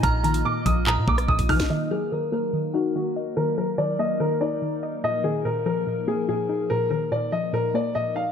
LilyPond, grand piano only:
\new Staff \with { instrumentName = "Grand piano" } { \time 4/4 \key ees \minor \tempo 4 = 144 bes''8 bes''8 d'''8 ees'''8 bes''8 d'''8 ees'''8 f'''8 | ees''8 aes'8 bes'8 bes'4 ges'8 ges'4 | bes'8 bes'8 d''8 ees''8 bes'8 d''4. | ees''8 aes'8 bes'8 bes'4 aes'8 aes'4 |
bes'8 bes'8 d''8 ees''8 bes'8 d''8 ees''8 f''8 | }